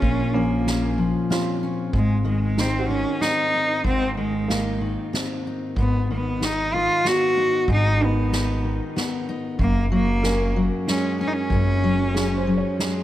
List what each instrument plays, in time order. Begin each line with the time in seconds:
Already playing: felt piano G#4 A#4
0.00 upright bass A#1, steel-string acoustic guitar A#2, cello C#4, kick, ride
0.34 steel-string acoustic guitar F3, cello A#3, felt piano C#4, ride
0.66 steel-string acoustic guitar C#4, snare, ride
0.98 steel-string acoustic guitar F3
1.30 steel-string acoustic guitar C4, felt piano F4, snare, ride
1.63 steel-string acoustic guitar C#4
1.93 upright bass G#1, steel-string acoustic guitar G#2, cello G#3, kick, ride
2.25 steel-string acoustic guitar D#3, cello G#3, ride
2.56 cello C4, felt piano D#4, steel-string acoustic guitar D#4, snare, ride
2.79 felt piano F#4
2.89 steel-string acoustic guitar D#3, cello C#4
3.20 steel-string acoustic guitar C4, cello D#4, snare, ride
3.54 steel-string acoustic guitar D#4
3.84 upright bass G#1, steel-string acoustic guitar G#2, cello C4, kick
4.16 steel-string acoustic guitar D#3, cello G#3, ride
4.48 felt piano A#3, steel-string acoustic guitar D#4, snare, ride
4.81 steel-string acoustic guitar D#3
5.13 steel-string acoustic guitar C4, snare, ride
5.47 steel-string acoustic guitar D#4
5.76 upright bass G#1, steel-string acoustic guitar G#2, cello B3, kick, ride
6.08 steel-string acoustic guitar D#3, ride
6.14 cello B3
6.40 steel-string acoustic guitar D#4, cello D#4, snare, ride
6.74 steel-string acoustic guitar D#3, cello F4
7.04 steel-string acoustic guitar B3, cello F#4, snare, ride
7.37 steel-string acoustic guitar D#4
7.67 upright bass G#1, steel-string acoustic guitar G#2, kick, ride
7.72 cello D#4
8.00 steel-string acoustic guitar D#3, felt piano D#4, ride
8.04 cello B3
8.31 steel-string acoustic guitar D#4, snare, ride
8.64 steel-string acoustic guitar D#3
8.96 steel-string acoustic guitar B3, snare, ride
9.29 steel-string acoustic guitar D#4
9.59 upright bass F#1, steel-string acoustic guitar F#2, cello A#3, kick, ride
9.91 steel-string acoustic guitar F#3, cello A#3, ride
10.23 steel-string acoustic guitar C#4, felt piano A#4, snare
10.56 steel-string acoustic guitar F#3
10.86 steel-string acoustic guitar G#3, cello C#4, snare, ride
11.21 cello C#4, steel-string acoustic guitar C#4
11.28 cello D#4
11.33 cello C#4
11.50 upright bass F#1, steel-string acoustic guitar F#2, kick, ride
11.82 steel-string acoustic guitar F#3, ride
12.14 steel-string acoustic guitar C#4, felt piano G#4, snare, ride
12.36 felt piano C5
12.47 steel-string acoustic guitar F#3
12.57 felt piano C#5
12.78 steel-string acoustic guitar G#3, snare, ride